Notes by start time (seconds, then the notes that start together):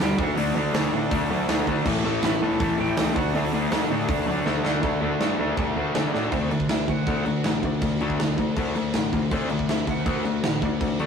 0.00 D2 G2 D3 G3 G4 G5
0.18 D2 D3 A3 D4 F#4, kick
0.23 F#5
0.36 D2 D3 A3 D4, open hi-hat
0.54 D2 D3 A3 D4 D5
0.73 D2 D3 A3 D4, snare, open hi-hat
0.92 A2 D3 A3 D4
1.11 D3 A3 D4, kick, open hi-hat
1.29 F#2 D3 A3 D4
1.48 D2 D3 A3 D4, snare, open hi-hat
1.67 D2 D3 A3 D4, kick
1.85 A1 A2 E3 A3, kick, crash
2.04 A1 A2 E3 A3
2.22 A1 A2 E3 A3 B4 B5, snare, open hi-hat
2.41 E1 A2 E3 A3 A4 A5
2.60 A1 A2 E3 A3 A4 A5, kick, open hi-hat
2.78 A1 A2 E3 A3 G4 G5
2.97 C#2 A2 E3 A3, snare, open hi-hat
3.15 D2 D3 A3 D4 F#4 F#5, kick
3.34 D2 D3 A3 D4 E4 E5, open hi-hat
3.52 D2 D3 A3 D4 D5
3.71 D2 D3 A3 D4, snare, open hi-hat
3.90 A2 D3 A3 D4
4.08 D3 A3 D4, kick, open hi-hat
4.27 F#2 D3 A3 D4
4.46 D2 D3 A3 D4, snare
4.64 D2 D3 A3 D4, snare
4.82 D2 D3 A3 D4, kick, crash
5.01 D2 D3 A3 D4
5.20 G2 D3 A3 D4, snare, crash
5.38 D2 D3 A3 D4
5.57 C2 D3 A3 D4, kick, crash
5.76 D2 D3 A3 D4
5.94 D3 A3 D4, snare, crash
6.13 A2 D3 A3 D4, snare
6.31 D2 D3 A3 C4 D4 C5, kick, crash
6.51 D2 D3 A3 D4 D5, crash
6.60 kick
6.69 D2 D3 A3 E4 E5, snare, crash
6.88 D2 D3 A3 F#4 F#5, kick, crash
7.06 D2 D3 A3 D4 F#4 F#5, kick, crash
7.26 D2 D3 A3, crash
7.44 A1 D3 A3, snare, crash
7.63 D2 D3 A3 D4 D5, kick, crash
7.81 D2 D3 A3, kick, crash
8.00 D2 D3 A3 D4, crash
8.10 kick
8.19 D2 D3 A3, snare, crash
8.37 D2 D3 A3, kick, crash
8.56 D2 D3 A3 D4, kick, crash
8.75 D2 D3 A3, crash
8.93 A1 D3 A3, snare, crash
9.12 D2 D3 A3, kick, crash
9.31 D2 D3 A3 C4 D4 C5, kick, crash
9.49 D2 D3 A3 D4 D5, crash
9.59 kick
9.69 D2 D3 A3 E4 E5, snare, crash
9.87 D2 D3 A3 F#4 F#5, kick, crash
10.06 D2 D3 A3 D4 F#4 F#5, kick, crash
10.25 D2 D3 A3, crash
10.43 A1 D3 A3, snare, crash
10.62 D2 D3 A3 D4 D5, kick, crash
10.81 D2 D3 A3, kick, crash
10.99 D2 D3 A3 D4, crash